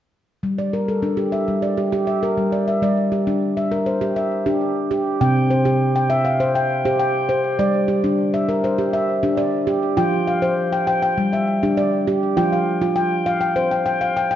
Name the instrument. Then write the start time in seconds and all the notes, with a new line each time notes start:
handpan
0.43 G3
0.58 D5
0.73 A#4
0.88 A4
1.03 D4
1.17 G4
1.32 E5
1.48 G3
1.62 D5
1.78 G4
1.92 G4
2.07 E5
2.23 A#4
2.37 G3
2.52 D5
2.67 E5
2.82 G3 D5
3.12 G4
3.27 D4
3.57 E5
3.72 A#4
3.86 C5
4.01 G4
4.16 E5
4.46 D4 G4
4.91 G4
5.21 C3 C4 G5
5.50 C5
5.65 G4
5.96 G5
6.10 E5
6.25 F5
6.40 C5
6.55 G5
6.85 G4 C5
7.00 G5
7.29 C5
7.59 G3 D5
7.88 G4
8.04 D4
8.34 E5
8.49 A#4
8.64 C5
8.79 G4
8.94 E5
9.23 D4 G4
9.37 D5
9.67 G4
9.97 F3 F4 G5
10.28 F5
10.42 C5
10.73 G5
10.87 G5
11.02 G5
11.17 G3
11.33 E5
11.63 D4 G4
11.77 D5
12.07 G4
12.37 F3 F4 G5
12.52 F5
12.81 F4
12.96 G5
13.26 F5
13.41 G5
13.56 C5
13.71 G5
13.86 G5
14.01 F5
14.17 G5
14.31 G5